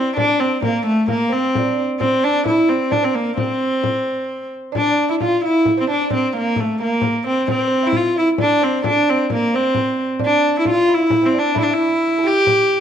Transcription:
Already playing: viola da gamba C4, lute C4
0.17 lute D4, viola da gamba D4, frame drum
0.24 lute D4
0.29 lute D4
0.39 lute C4, viola da gamba C4
0.62 lute A#3, viola da gamba A#3, frame drum
0.85 lute A3, viola da gamba A3
1.08 lute A#3, viola da gamba A#3, frame drum
1.29 lute C4, viola da gamba C4, frame drum
1.55 lute D4, frame drum
2.00 lute C4, viola da gamba C4, frame drum
2.24 lute D4, viola da gamba D4
2.44 lute E4, viola da gamba E4, frame drum
2.68 lute C4, viola da gamba C4, frame drum
2.91 lute D4, viola da gamba D4, frame drum
3.03 lute C4, viola da gamba C4
3.14 lute A#3, viola da gamba A#3
3.37 lute C4, viola da gamba C4, frame drum
3.84 frame drum
4.72 lute D4, frame drum
4.77 viola da gamba D4
4.82 lute D4
4.92 lute D4
5.09 lute E4, viola da gamba E4
5.20 lute F4, viola da gamba F4, frame drum
5.44 lute E4, viola da gamba E4
5.65 frame drum
5.77 lute C4, viola da gamba C4
5.87 lute D4, viola da gamba D4, frame drum
6.10 lute C4, frame drum
6.14 viola da gamba C4
6.33 lute A#3
6.37 viola da gamba A#3
6.56 lute A3, frame drum
6.60 viola da gamba A3
6.80 lute A#3, viola da gamba A#3
7.01 lute A#3, frame drum
7.25 lute C4, viola da gamba C4, frame drum
7.48 lute C4, viola da gamba C4, frame drum
7.58 lute C4
7.67 lute C4
7.83 lute E4
7.87 viola da gamba E4
7.93 lute F4, viola da gamba F4, frame drum
8.16 lute E4, viola da gamba E4
8.38 lute D4, viola da gamba D4, frame drum
8.61 lute C4, viola da gamba C4
8.84 lute D4, viola da gamba D4, frame drum
9.10 viola da gamba C4
9.30 lute A#3, frame drum
9.34 viola da gamba A#3
9.54 lute C4, viola da gamba C4
9.75 frame drum
9.80 lute C4
10.19 lute D4, frame drum
10.25 viola da gamba D4
10.59 viola da gamba E4
10.65 lute F4, frame drum
10.71 viola da gamba F4
10.88 lute E4
10.94 viola da gamba E4
11.00 lute E4
11.06 lute E4, frame drum
11.22 lute C4, viola da gamba C4
11.34 lute D4, frame drum
11.39 viola da gamba D4
11.55 lute E4, frame drum
11.59 viola da gamba E4
11.63 viola da gamba D4
11.70 lute E4, viola da gamba E4
12.18 lute A4
12.23 lute G4, viola da gamba G4
12.47 frame drum
12.70 frame drum

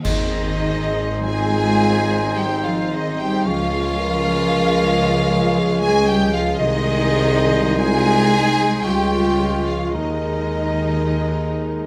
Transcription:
0.04 double bass section G#1, tuba G#1, timpani G#2, cello section D#3, bassoon G#3, viola section C4 G#4, violin section D#4 D#5, clarinet D#4, cor anglais C5, flute section D#5, concert bass drum, crash
1.23 cello section G#3, french horn section F4, violin section G#4 G#5, flute section G#5
2.36 cello section G3, french horn section D#4, violin section G4 G5, flute section G5
2.64 cello section F3, violin section F4 F5, flute section F5
2.92 cello section D#3, violin section D#4 D#5, flute section D#5
3.19 cello section G3, violin section G4 G5, flute section G5
3.46 tuba C#2, double bass section C#2, cello section F3, bassoon G#3, viola section G#3 G#4, clarinet C#4, violin section F4 F5, french horn section F4, cor anglais C#5, flute section F5
3.99 french horn section A#4
5.60 french horn section G#4
5.82 cello section G#3, violin section G#4 G#5, flute section G#5
6.07 cello section G3, violin section G4 G5, flute section G5
6.33 cello section F3, violin section F4 F5, flute section F5
6.59 double bass section C2, tuba C2, cello section D#3, viola section G#3 G#4, clarinet D#4, violin section D#4 D#5, french horn section G#4, cor anglais C5, flute section D#5
7.76 cello section G#3, viola section G#3 G#4, french horn section F4, violin section G#4 G#5, flute section G#5
8.33 french horn section D#4
8.84 tuba C#2, double bass section C#2, cello section G3, bassoon G#3, viola section G#3 F4, french horn section F4, clarinet F4, violin section G4 G5, cor anglais C#5, flute section G5
9.67 cello section F3, violin section F4 F5, flute section F5
9.94 tuba D#2, double bass section D#2, timpani D#3, cello section D#3, viola section G#3 D#4, violin section D#4 D#5, clarinet D#4, french horn section A#4, cor anglais A#4, flute section D#5

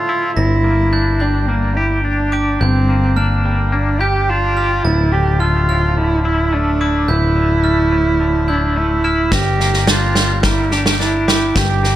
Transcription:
Already playing: clean electric guitar A2 D3 A3, cello F4
0.09 clean electric guitar E4
0.37 picked electric bass G1, clean electric guitar G2, cello E4, glockenspiel A#6
0.64 clean electric guitar A#3
0.93 clean electric guitar D4, glockenspiel G6
1.20 clean electric guitar G3, cello D4, glockenspiel G6
1.49 clean electric guitar A#3, cello A#3
1.76 cello E4, clean electric guitar G4
2.04 cello D4, clean electric guitar D4
2.32 clean electric guitar G4, glockenspiel D6
2.61 picked electric bass G1, clean electric guitar G2, cello C4, glockenspiel G6
2.89 clean electric guitar A#3
3.16 cello A#3, clean electric guitar D4, glockenspiel F6
3.45 clean electric guitar G3
3.72 clean electric guitar A#3, cello D4
4.00 cello G4, clean electric guitar G4, glockenspiel G6
4.29 clean electric guitar D4, cello F4
4.57 clean electric guitar G4, glockenspiel F6
4.85 picked electric bass D1, clean electric guitar D2, cello E4, glockenspiel A6
5.12 clean electric guitar D3, cello G4
5.40 clean electric guitar A3, cello F4, glockenspiel F6
5.69 clean electric guitar A2, glockenspiel F6
5.97 clean electric guitar D3, cello E4
6.25 clean electric guitar E4, cello E4
6.53 clean electric guitar A3, cello D4
6.81 clean electric guitar E4, glockenspiel D6
7.08 picked electric bass D1, clean electric guitar D2, cello E4, glockenspiel G6
7.36 clean electric guitar D3
7.64 clean electric guitar A3, glockenspiel F6
7.92 clean electric guitar A2
8.20 clean electric guitar D3
8.48 cello D4, clean electric guitar E4, glockenspiel G6
8.76 clean electric guitar A3, cello E4
9.04 clean electric guitar E4, glockenspiel F6
9.32 picked electric bass G1, clean electric guitar G2, cello G4, glockenspiel A#6, kick, snare
9.60 clean electric guitar A#3, snare
9.74 snare
9.87 clean electric guitar D4, cello F4, glockenspiel G6, snare
10.15 clean electric guitar G3, glockenspiel G6, snare
10.43 clean electric guitar A#3, cello E4, kick, snare
10.71 cello D4, clean electric guitar G4, snare
10.86 snare
11.00 clean electric guitar D4, cello E4, snare
11.28 clean electric guitar G4, glockenspiel D6, snare
11.55 picked electric bass G1, clean electric guitar G2, cello G4, glockenspiel G6, kick, snare
11.83 clean electric guitar A#3, snare

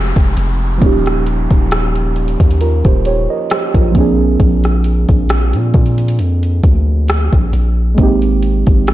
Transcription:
Already playing: 808-style bass F1, synth keys F3 G#3 C4 D#4 G4, downlifter
0.16 808-style bass F1, kick, closed hi-hat
0.37 808-style bass F1, closed hi-hat
0.78 synth keys F3 A#3, closed hi-hat
0.82 808-style bass D#1, synth keys C#4 D#4, kick
0.86 synth keys G4
1.06 cross-stick, closed hi-hat
1.27 closed hi-hat
1.51 808-style bass D#1, kick, closed hi-hat
1.71 cross-stick, closed hi-hat
1.96 closed hi-hat
2.16 closed hi-hat
2.28 closed hi-hat
2.40 808-style bass D#2, kick, closed hi-hat
2.51 closed hi-hat
2.61 synth keys F4 A#4, closed hi-hat
2.85 808-style bass D#1, synth keys G4 C5, kick, closed hi-hat
3.05 synth keys G4 C#5, closed hi-hat
3.30 synth keys A#4 D#5
3.50 synth keys G4 C5, cross-stick, closed hi-hat
3.74 808-style bass A#1, synth keys F4 A#4, kick, closed hi-hat
3.92 synth keys F3 A#3, kick, closed hi-hat
3.96 synth keys C4 D4
4.00 synth keys G#4
4.40 808-style bass A#1, kick, closed hi-hat
4.64 cross-stick, closed hi-hat
4.84 closed hi-hat
5.09 808-style bass A#1, kick, closed hi-hat
5.29 cross-stick, closed hi-hat
5.53 808-style bass A#2, closed hi-hat
5.74 808-style bass A#2, kick, closed hi-hat
5.86 closed hi-hat
5.98 closed hi-hat
6.08 closed hi-hat
6.19 808-style bass F2, closed hi-hat
6.43 closed hi-hat
6.64 808-style bass D2, kick, closed hi-hat
7.08 cross-stick, closed hi-hat
7.33 808-style bass A#1, kick, closed hi-hat
7.53 808-style bass A#1, closed hi-hat
7.95 808-style bass G#1, synth keys G#3 A#3, kick, closed hi-hat
7.99 synth keys C4 D#4
8.03 synth keys G4
8.22 closed hi-hat
8.43 closed hi-hat
8.67 808-style bass G#1, kick, closed hi-hat
8.87 cross-stick, closed hi-hat

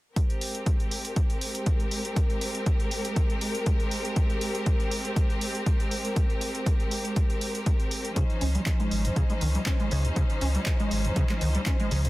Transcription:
0.16 string section G#3 C4 G4 A#4, kick, closed hi-hat
0.30 closed hi-hat
0.41 open hi-hat
0.55 closed hi-hat
0.66 kick, closed hi-hat
0.80 closed hi-hat
0.91 open hi-hat
1.05 closed hi-hat
1.16 kick, closed hi-hat
1.30 closed hi-hat
1.41 open hi-hat
1.55 closed hi-hat
1.66 kick, closed hi-hat
1.80 closed hi-hat
1.91 open hi-hat
2.05 closed hi-hat
2.16 kick, closed hi-hat
2.30 closed hi-hat
2.41 open hi-hat
2.55 closed hi-hat
2.66 kick, closed hi-hat
2.80 closed hi-hat
2.91 open hi-hat
3.05 closed hi-hat
3.16 kick, closed hi-hat
3.30 closed hi-hat
3.41 open hi-hat
3.55 closed hi-hat
3.66 kick, closed hi-hat
3.80 closed hi-hat
3.91 open hi-hat
4.05 closed hi-hat
4.16 kick, closed hi-hat
4.30 closed hi-hat
4.41 open hi-hat
4.55 closed hi-hat
4.66 kick, closed hi-hat
4.80 closed hi-hat
4.91 open hi-hat
5.05 closed hi-hat
5.16 kick, closed hi-hat
5.30 closed hi-hat
5.41 open hi-hat
5.55 closed hi-hat
5.66 kick, closed hi-hat
5.80 closed hi-hat
5.91 open hi-hat
6.05 closed hi-hat
6.16 kick, closed hi-hat
6.30 closed hi-hat
6.41 open hi-hat
6.55 closed hi-hat
6.66 kick, closed hi-hat
6.80 closed hi-hat
6.91 open hi-hat
7.05 closed hi-hat
7.16 kick, closed hi-hat
7.30 closed hi-hat
7.41 open hi-hat
7.55 closed hi-hat
7.66 kick, closed hi-hat
7.80 closed hi-hat
7.91 open hi-hat
8.05 closed hi-hat
8.16 acid bass C#3, string section F3 C#4 D#4 C5, kick, closed hi-hat
8.30 closed hi-hat
8.41 sub bass C#2, acid bass C#4, open hi-hat
8.55 acid bass G3, closed hi-hat
8.66 kick, clap, closed hi-hat
8.80 acid bass G#3, closed hi-hat
8.91 sub bass G#1, open hi-hat
9.05 acid bass C#2, closed hi-hat
9.16 acid bass C#3, kick, closed hi-hat
9.30 acid bass G#3, closed hi-hat
9.41 sub bass C#2, acid bass D#3, open hi-hat
9.55 acid bass G3, closed hi-hat
9.66 acid bass C#4, kick, clap, closed hi-hat
9.80 acid bass G#3, closed hi-hat
9.91 sub bass C#2, acid bass C#3, open hi-hat
10.05 acid bass C#2, closed hi-hat
10.16 acid bass C#3, kick, closed hi-hat
10.30 closed hi-hat
10.41 sub bass C#2, acid bass C#4, open hi-hat
10.55 acid bass G3, closed hi-hat
10.66 kick, clap, closed hi-hat
10.80 acid bass G#3, closed hi-hat
10.91 sub bass G#1, open hi-hat
11.05 acid bass C#2, closed hi-hat
11.16 acid bass C#3, kick, closed hi-hat
11.29 acid bass G#3, clap, closed hi-hat
11.41 sub bass C#2, acid bass D#3, open hi-hat
11.55 acid bass G3, closed hi-hat
11.66 acid bass C#4, kick, clap, closed hi-hat
11.80 acid bass G#3, closed hi-hat
11.91 sub bass C#2, acid bass C#3, open hi-hat
12.05 acid bass C#2, closed hi-hat

